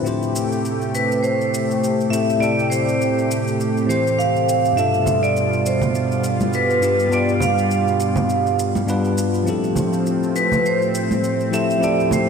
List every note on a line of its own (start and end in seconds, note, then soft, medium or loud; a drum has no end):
0.02 2.07 A2 medium
0.02 4.72 C3 medium
0.02 4.73 A3 medium
0.02 2.07 C4 medium
0.02 2.08 E4 medium
0.02 4.72 G4 medium
0.02 2.09 G4 medium
0.02 shaker soft
0.08 2.10 C5 medium
0.23 shaker soft
0.36 shaker medium
0.52 shaker soft
0.65 shaker soft
0.82 shaker soft
0.95 1.22 B4 medium
0.95 shaker medium
1.12 shaker soft
1.23 2.14 C5 medium
1.23 shaker soft
1.41 shaker soft
1.54 shaker medium
1.71 shaker soft
1.84 shaker soft
2.01 shaker soft
2.10 2.37 A2 medium
2.10 2.38 C4 medium
2.10 2.38 E4 medium
2.10 2.39 G4 medium
2.10 2.39 A4 medium
2.10 2.41 E5 loud
2.10 shaker medium
2.30 shaker soft
2.38 3.84 A2 medium
2.38 3.85 C4 medium
2.38 3.86 E4 medium
2.38 2.71 D5 medium
2.42 3.86 G4 medium
2.42 3.87 A4 medium
2.42 shaker soft
2.59 shaker soft
2.70 3.25 C5 medium
2.70 shaker medium
2.88 shaker soft
3.02 shaker soft
3.18 shaker soft
3.31 shaker medium
3.47 shaker soft
3.61 shaker soft
3.77 shaker soft
3.85 4.72 A2 medium
3.85 4.73 E3 medium
3.85 4.73 C4 medium
3.89 4.74 G4 medium
3.89 4.19 C5 medium
3.89 4.75 C5 medium
3.89 shaker medium
4.07 shaker soft
4.19 4.79 F5 medium
4.19 shaker soft
4.36 shaker soft
4.49 shaker medium
4.65 shaker soft
4.73 6.77 G2 medium
4.73 6.78 B2 medium
4.73 9.43 B2 medium
4.73 9.43 G3 medium
4.73 6.79 D4 medium
4.73 9.43 F4 medium
4.77 6.80 F4 medium
4.77 6.81 A4 medium
4.77 5.20 E5 medium
4.77 shaker soft
4.94 shaker soft
5.06 low conga medium
5.06 shaker medium
5.23 5.66 D5 medium
5.23 shaker soft
5.36 shaker soft
5.53 shaker soft
5.66 6.20 C5 medium
5.66 shaker medium
5.82 low conga medium
5.82 shaker soft
5.95 shaker soft
6.11 shaker soft
6.24 shaker medium
6.40 high conga medium
6.40 shaker soft
6.53 7.14 B4 medium
6.53 shaker soft
6.70 shaker soft
6.81 7.07 G2 medium
6.81 7.08 B3 medium
6.81 7.09 D4 medium
6.81 7.09 F4 medium
6.81 7.09 G4 medium
6.81 shaker medium
6.99 shaker soft
7.08 8.83 G2 medium
7.08 8.84 B3 medium
7.08 8.85 D4 medium
7.12 8.85 F4 medium
7.12 8.86 G4 medium
7.12 7.26 D5 medium
7.12 shaker soft
7.29 shaker soft
7.40 8.56 F5 medium
7.40 low conga medium
7.40 shaker medium
7.58 shaker soft
7.71 shaker soft
7.88 shaker soft
8.00 shaker medium
8.16 low conga medium
8.16 shaker soft
8.29 shaker soft
8.46 shaker soft
8.59 shaker medium
8.75 high conga medium
8.75 shaker soft
8.87 9.43 G2 medium
8.87 9.44 B3 medium
8.87 9.44 D4 medium
8.87 9.44 F4 medium
8.87 9.45 B4 loud
8.87 shaker soft
9.05 shaker soft
9.18 shaker medium
9.34 shaker soft
9.44 12.29 A2 medium
9.44 11.48 F3 medium
9.44 11.80 F3 medium
9.44 11.49 C4 medium
9.44 11.50 E4 medium
9.44 shaker soft
9.48 12.29 C4 medium
9.48 11.50 G4 medium
9.48 11.51 A4 medium
9.64 shaker soft
9.76 low conga medium
9.76 shaker medium
9.93 shaker soft
10.07 shaker soft
10.23 shaker soft
10.36 10.63 B4 medium
10.36 shaker medium
10.52 low conga medium
10.52 shaker soft
10.66 11.56 C5 medium
10.66 shaker soft
10.82 shaker soft
10.95 shaker medium
11.11 high conga medium
11.11 shaker soft
11.24 shaker soft
11.40 shaker soft
11.51 11.77 F3 medium
11.51 11.79 C4 medium
11.51 11.79 E4 medium
11.51 11.79 G4 medium
11.51 11.80 A4 medium
11.51 11.84 E5 loud
11.51 shaker medium
11.70 shaker soft
11.78 12.29 F3 medium
11.78 12.29 C4 medium
11.78 12.29 E4 medium
11.82 12.29 G4 medium
11.82 12.29 A4 medium
11.82 12.13 D5 medium
11.82 shaker soft
12.00 shaker soft
12.11 12.29 C5 medium
12.11 low conga medium
12.11 shaker medium